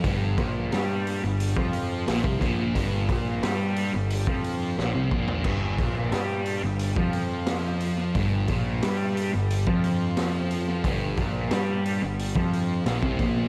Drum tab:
CC |----------------|----------------|x---------------|----------------|
HH |o-o-o-o-o-o-o-o-|o-o-o-o-o-o-----|--o-o-o-o-o-o-o-|o-o-o-o-o-o-o-o-|
SD |----o-------o---|----o-------o---|----o-------o---|----o-------o---|
FT |----------------|---------------o|----------------|----------------|
BD |o-o------o---oo-|o-o------o----o-|o-o------o------|o-o------o------|

CC |----------------|
HH |o-o-o-o-o-o-o-o-|
SD |----o-------o---|
FT |----------------|
BD |o-o------o---oo-|